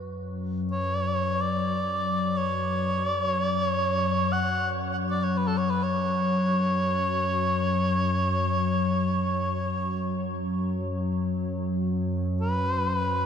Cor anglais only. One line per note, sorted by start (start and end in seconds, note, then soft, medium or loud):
0.71 1.42 C#5 medium
1.41 2.39 D5 medium
2.37 3.08 C#5 medium
3.08 3.23 D5 medium
3.23 3.47 C#5 medium
3.47 3.62 D5 medium
3.62 4.34 C#5 medium
4.33 4.69 F#5 medium
4.93 4.95 F#5 medium
5.10 5.25 D5 medium
5.23 5.38 C#5 medium
5.37 5.49 B4 medium
5.47 5.59 A4 medium
5.57 5.72 C#5 medium
5.70 5.85 B4 medium
5.83 10.15 C#5 medium
12.41 13.26 B4 medium